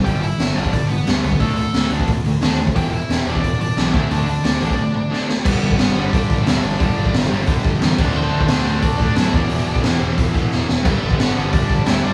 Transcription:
<<
  \new Staff \with { instrumentName = "Lead electric guitar" } { \time 4/4 \key g \major \tempo 4 = 178 <g' g''>8 <e' e''>4 <d' d''>8 <d' d''>8 <b b'>4 <b b'>8 | <a a'>8 <a a'>4 r2 r8 | <g' g''>8 <e' e''>4 <d' d''>4 <d' d''>4 <e' e''>8 | <d' d''>4 <d' d''>2~ <d' d''>8 r8 |
<b b'>4 <b b'>4 <d' d''>4 <e' e''>8 <d' d''>8~ | <d' d''>4 r2. | <c' c''>4 <c' c''>4 <d' d''>4 <e' e''>8 <d' d''>8~ | <d' d''>4 r2. |
<b b'>4 <b b'>4 <d' d''>4 <e' e''>8 <d' d''>8 | }
  \new Staff \with { instrumentName = "Distorted electric guitar" } { \clef bass \time 4/4 \key g \major r1 | r1 | r1 | r1 |
<g, d g>2 <g, d g>2 | <g, d g>2 <g, d g>4. <d a d'>8~ | <d a d'>4. <d a d'>2 <e, b, e>8~ | <e, b, e>4. <e, b, e>2 r8 |
<g, d g>2 <g, d g>2 | }
  \new Staff \with { instrumentName = "Overdriven electric guitar" } { \clef bass \time 4/4 \key g \major <g, d g>8 <g, d>8 <g, d>8 <g, d g>8 <g, d>8 <g, d>8 <g, d g>8 <g, d>8 | <d a d'>8 <d a>8 <d a>8 <d a d'>8 <d a>8 <d a>8 <d a d'>8 <d a>8 | <e, b, e>8 <e, b,>8 <e, b,>8 <e, b, e>8 <e, b,>8 <e, b,>8 <e, b, e>8 <d a d'>8 | <d a d'>8 <d a>8 <d a>8 <d a d'>8 <d a>8 <d a>8 <d a d'>8 <d a>8 |
<g, d g>4. <g, d g>4. <g, d g>4 | <g, d g>4. <g, d g>4. <g, d g>8 <d a d'>8~ | <d a d'>4 <d a d'>4. <d a d'>4 <e, b, e>8~ | <e, b, e>4 <e, b, e>4. <e, b, e>4 r8 |
<g, d g>4. <g, d g>4. <g, d g>4 | }
  \new Staff \with { instrumentName = "Overdriven electric guitar" } { \clef bass \time 4/4 \key g \major <g, d g>8 <g, d>8 <g, d>8 <g, d g>8 <g, d>8 <g, d>8 <g, d g>8 <g, d>8 | <d a d'>8 <d a>8 <d a>8 <d a d'>8 <d a>8 <d a>8 <d a d'>8 <d a>8 | <e, b, e>8 <e, b,>8 <e, b,>8 <e, b, e>8 <e, b,>8 <e, b,>8 <e, b, e>8 <d a d'>8 | <d a d'>8 <d a>8 <d a>8 <d a d'>8 <d a>8 <d a>8 <d a d'>8 <d a>8 |
<g, d g>4. <g, d g>4. <g, d g>4 | <g, d g>4. <g, d g>4. <g, d g>8 <d a d'>8~ | <d a d'>4 <d a d'>4. <d a d'>4 <e, b, e>8~ | <e, b, e>4 <e, b, e>4. <e, b, e>4 r8 |
<g, d g>4. <g, d g>4. <g, d g>4 | }
  \new Staff \with { instrumentName = "Picked electric bass" } { \clef bass \time 4/4 \key g \major g,,4 g,,8 g,,8 g,,8 g,,8 d,8 cis,8 | d,4 d,8 d,8 d,8 d,8 ees,4 | e,,4 e,,8 e,,8 e,,8 e,,8 b,,8 d,8 | d,4 d,8 a,,8 r2 |
g,,8 g,,8 g,,8 g,,8 g,,8 g,,8 d,8 g,,8 | g,,8 g,,8 g,,8 g,,8 g,,8 g,,8 e,8 d,8 | d,8 d,8 d,8 d,8 d,8 d,8 fis,8 e,,8 | e,,8 e,,8 e,,8 e,,8 e,,8 e,,8 e,,8 e,,8 |
g,,8 g,,8 g,,8 g,,8 g,,8 g,,8 d,8 g,,8 | }
  \new DrumStaff \with { instrumentName = "Drums" } \drummode { \time 4/4 <hho bd>8 hho8 <hho sn>8 hho16 bd16 <hho bd>8 hho8 <hho sn>8 hho16 bd16 | <hho bd>8 hho8 <hho sn>8 hho16 bd16 <hho bd>8 hho8 <hho sn>8 hho16 bd16 | <hho bd>8 hho8 <hho sn>8 hho16 bd16 <hho bd>8 hho8 <hho sn>8 <hho bd>8 | hho8 hho8 <hho sn>8 hho16 bd16 r4 sn8 sn8 |
<cymc bd>8. bd16 <hho sn>4 <hho bd>8 bd8 <hho sn>4 | <hho bd>8. bd16 <hho sn>4 <hho bd>8 bd8 <hho sn>8 <cymc bd>8 | r8. bd16 <hho sn>4 <hho bd>8 bd8 <hho sn>8 bd8 | hho8. bd16 <hho sn>4 <hho bd>8 bd8 sn8 sn8 |
<cymc bd>8. bd16 <hho sn>4 <hho bd>8 bd8 <hho sn>4 | }
>>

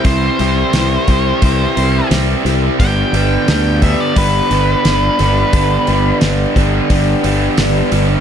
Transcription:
<<
  \new Staff \with { instrumentName = "Lead electric guitar" } { \time 4/4 \key g \major \tempo 4 = 88 c''2. r4 | g''4. e''16 d''16 b'2~ | b'4 r2. | }
  \new Staff \with { instrumentName = "Steel-string acoustic guitar" } { \time 4/4 \key g \major <c e g e' g'>8 <g e' g'>8 <e g e' g'>8 <g e' g'>8 <c e g e' g'>8 <g e' g'>8 <e g e' g'>8 <g e' g'>8 | <g, d g b d' g'>8 <g b d' g'>8 <g b d' g'>8 <g b d' g'>8 <g, d g b d' g'>8 <g b d' g'>8 <g b d' g'>8 <g b d' g'>8 | <g, d g b d' g'>8 <g b d' g'>8 <g b d' g'>8 <g b d' g'>8 <g, d g b d' g'>8 <g b d' g'>8 <g b d' g'>8 <g b d' g'>8 | }
  \new Staff \with { instrumentName = "Overdriven electric guitar" } { \clef bass \time 4/4 \key g \major <c g c' e'>8 <c g c' e'>8 <c g c' e'>8 <c g c' e'>8 <c g c' e'>8 <c g c' e'>8 <c g c' e'>8 <c g c' e'>8 | <g, d g b d'>8 <g, d g b d'>8 <g, d g b d'>8 <g, d g b d'>8 <g, d g b d'>8 <g, d g b d'>8 <g, d g b d'>8 <g, d g b d'>8 | <g, d g b d'>8 <g, d g b d'>8 <g, d g b d'>8 <g, d g b d'>8 <g, d g b d'>8 <g, d g b d'>8 <g, d g b d'>8 <g, d g b d'>8 | }
  \new Staff \with { instrumentName = "Overdriven electric guitar" } { \clef bass \time 4/4 \key g \major <c g c' e' g'>8 <c g c' e' g'>8 <c g c' e' g'>8 <c g c' e' g'>8 <c g c' e' g'>8 <c g c' e' g'>8 <c g c' e' g'>8 <c g c' e' g'>8 | <g, d g b d'>8 <g, d g b d'>8 <g, d g b d'>8 <g, d g b d'>8 <g, d g b d'>8 <g, d g b d'>8 <g, d g b d'>8 <g, d g b d'>8 | <g, d g b d'>8 <g, d g b d'>8 <g, d g b d'>8 <g, d g b d'>8 <g, d g b d'>8 <g, d g b d'>8 <g, d g b d'>8 <g, d g b d'>8 | }
  \new Staff \with { instrumentName = "Fingered electric bass" } { \clef bass \time 4/4 \key g \major c,8 c,8 c,8 c,8 c,8 c,8 c,8 c,8 | g,,8 g,,8 d,4 g,,8 g,,8 g,,8 g,,8 | g,,8 g,,8 g,,8 g,,8 g,,8 g,,8 g,,8 g,,8 | }
  \new DrumStaff \with { instrumentName = "Drums" } \drummode { \time 4/4 <hho bd>8 hho8 <hho sn>8 <hho bd>8 <hho bd>8 hho8 <hho sn>8 <hho sn>8 | <hho bd>8 hho8 <hho sn>8 <hho bd>8 <hho bd>8 hho8 <hho sn>8 <hho sn>8 | <hho bd>8 hho8 <hho sn>8 <hho bd>8 <hho bd>8 hho8 <hho sn>8 hho8 | }
>>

